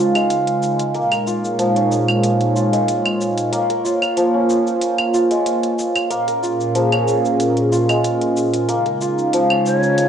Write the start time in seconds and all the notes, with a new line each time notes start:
Already playing: C#3 F3 G#3 A#3 C#4 D#4 F4 A#4
0.00 F4
0.15 G#3, closed hi-hat, cabasa, claves
0.30 closed hi-hat, cabasa
0.47 closed hi-hat
0.63 cabasa
0.79 closed hi-hat, cabasa
0.94 A#2 G#3 A#3 D#4 A#4 C#5, closed hi-hat, cabasa
1.12 A#4, closed hi-hat, cabasa, claves
1.27 F4, cabasa
1.45 cabasa
1.59 F3, closed hi-hat, cabasa
1.76 C#4, closed hi-hat
1.92 cabasa
2.09 cabasa, claves
2.24 closed hi-hat, cabasa
2.41 closed hi-hat
2.56 F4, cabasa
2.73 G#3, closed hi-hat, cabasa
2.88 closed hi-hat, cabasa
3.06 closed hi-hat, claves
3.21 cabasa
3.38 closed hi-hat, cabasa
3.52 A#3 F4 C5, closed hi-hat, cabasa
3.70 A#4, closed hi-hat
3.84 F4, cabasa
4.02 cabasa, claves
4.17 F3, closed hi-hat, cabasa
4.34 C#4
4.50 cabasa
4.67 cabasa
4.81 closed hi-hat, cabasa
4.98 closed hi-hat, claves
5.14 F4, cabasa
5.31 G#3, closed hi-hat, cabasa
5.46 closed hi-hat, cabasa
5.63 closed hi-hat
5.79 cabasa
5.95 closed hi-hat, cabasa, claves
6.10 A#2 A#3 C#4 G#4 A#4, closed hi-hat, cabasa
6.28 A#4, closed hi-hat, cabasa
6.43 F4, cabasa
6.61 cabasa
6.75 F3, closed hi-hat, cabasa
6.92 C#4, closed hi-hat, claves
7.08 cabasa
7.25 cabasa
7.40 closed hi-hat, cabasa
7.57 closed hi-hat
7.72 F4, cabasa
7.89 G#3, closed hi-hat, cabasa, claves
8.04 closed hi-hat, cabasa
8.22 closed hi-hat
8.37 cabasa
8.54 closed hi-hat, cabasa
8.69 C#3 G#3 A#3 D#4 F4, closed hi-hat, cabasa
8.86 A#4, closed hi-hat
9.01 F4, cabasa
9.19 cabasa
9.33 F3, closed hi-hat, cabasa
9.50 C#4, claves
9.66 C#5, cabasa
9.83 cabasa
9.98 closed hi-hat, cabasa